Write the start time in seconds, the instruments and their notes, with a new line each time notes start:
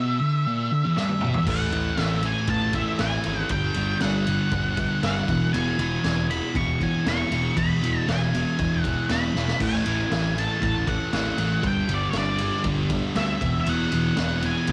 Already playing: distorted electric guitar B2, lead electric guitar E5
0.21 distorted electric guitar D3
0.47 distorted electric guitar A#2
0.72 distorted electric guitar D3
0.85 distorted electric guitar E2
0.97 distorted electric guitar G2, lead electric guitar E5, snare
1.09 high tom
1.21 distorted electric guitar B2, mid tom
1.34 distorted electric guitar E2, floor tom
1.46 picked electric bass A1, distorted electric guitar A2 E3 A3, lead electric guitar F#5, kick, crash
1.72 picked electric bass A1, distorted electric guitar A2 E3 A3, ride
1.97 picked electric bass A1, distorted electric guitar A2 E3 A3, snare, ride
2.02 lead electric guitar E5
2.23 distorted electric guitar A2 E3 A3, lead electric guitar G#5, ride
2.47 picked electric bass A1, distorted electric guitar A2 E3 A3, lead electric guitar A5, kick, ride
2.73 distorted electric guitar A2 E3 A3, lead electric guitar E5, kick, ride
2.99 picked electric bass A1, distorted electric guitar A2 E3 A3, lead electric guitar G#5, snare, ride
3.24 picked electric bass G#1, distorted electric guitar A2 E3 A3, ride
3.49 picked electric bass G1, distorted electric guitar G2 D3 G3, lead electric guitar G5, kick, ride
3.74 picked electric bass G1, distorted electric guitar G2 D3 G3, ride
4.00 picked electric bass G1, distorted electric guitar G2 D3 G3, lead electric guitar F#5, snare, ride
4.26 distorted electric guitar G2 D3 G3, ride
4.51 picked electric bass G1, distorted electric guitar G2 D3 G3, kick, ride
4.77 distorted electric guitar G2 D3 G3, kick, ride
5.03 picked electric bass G1, distorted electric guitar G2 D3 G3, lead electric guitar F#5, snare, ride
5.27 picked electric bass E1, distorted electric guitar E2 B2 E3, kick, ride
5.53 picked electric bass E1, distorted electric guitar E2 B2 E3, lead electric guitar G#5, ride
5.79 picked electric bass E1, distorted electric guitar E2 B2 E3, ride
6.04 picked electric bass E1, distorted electric guitar E2 B2 E3, snare, ride
6.29 distorted electric guitar E2 B2 E3, lead electric guitar B5, ride
6.55 picked electric bass E1, distorted electric guitar E2 B2 E3, lead electric guitar C#6, kick, ride
6.81 distorted electric guitar E2 B2 E3, lead electric guitar G#5, kick, ride
7.06 picked electric bass E1, distorted electric guitar E2 B2 E3, lead electric guitar C#6, snare, ride
7.31 picked electric bass E1, distorted electric guitar E2 B2 E3, ride
7.56 picked electric bass E1, distorted electric guitar E2 B2 E3, lead electric guitar B5, kick, ride
7.82 picked electric bass E1, distorted electric guitar E2 B2 E3, ride
8.08 picked electric bass E1, distorted electric guitar E2 B2 E3, lead electric guitar G#5, snare, ride
8.33 distorted electric guitar E2 B2 E3, ride
8.59 picked electric bass E1, distorted electric guitar E2 B2 E3, kick, ride
8.82 distorted electric guitar E2 B2, lead electric guitar F#5, kick, ride
8.86 distorted electric guitar E3
9.09 picked electric bass E1, distorted electric guitar E2 B2 E3, lead electric guitar B5, snare, ride
9.35 picked electric bass E1, distorted electric guitar E2 B2 E3, snare
9.48 snare
9.59 picked electric bass A1, distorted electric guitar A2 E3 A3, lead electric guitar G#5, kick, crash
9.85 picked electric bass A1, distorted electric guitar A2 E3 A3, ride
10.10 picked electric bass A1, distorted electric guitar A2 E3 A3, snare, ride
10.35 distorted electric guitar A2 E3 A3, lead electric guitar A5, ride
10.60 picked electric bass A1, distorted electric guitar A2 E3 A3, lead electric guitar A5, kick, ride
10.87 distorted electric guitar A2 E3 A3, lead electric guitar F#5, kick, ride
11.11 picked electric bass A1, distorted electric guitar A2 E3 A3, snare, ride
11.37 picked electric bass A1, distorted electric guitar A2 E3 A3, ride
11.62 picked electric bass G1, distorted electric guitar G2 D3 G3, kick, ride
11.67 lead electric guitar G5
11.89 picked electric bass G1, distorted electric guitar G2 D3 G3, ride
11.94 lead electric guitar D5
12.10 picked electric bass G1, distorted electric guitar G2, lead electric guitar C#5, snare, ride
12.15 distorted electric guitar D3 G3, lead electric guitar D5
12.38 distorted electric guitar G2 D3 G3, ride
12.64 picked electric bass G1, distorted electric guitar G2 D3 G3, kick, ride
12.90 distorted electric guitar G2 D3 G3, kick, ride
13.15 picked electric bass D2, distorted electric guitar G2 D3 G3, lead electric guitar E5, snare, ride
13.41 picked electric bass E1, distorted electric guitar E2 B2 E3, kick, ride
13.61 lead electric guitar E5
13.66 picked electric bass E1, distorted electric guitar E2 B2 E3, lead electric guitar F#5, ride
13.92 picked electric bass E1, distorted electric guitar E2 B2 E3, ride
14.17 picked electric bass E1, distorted electric guitar E2 B2 E3, snare, ride
14.42 distorted electric guitar E2 B2 E3, lead electric guitar G#5, ride
14.67 picked electric bass E1, distorted electric guitar E2 B2, kick, ride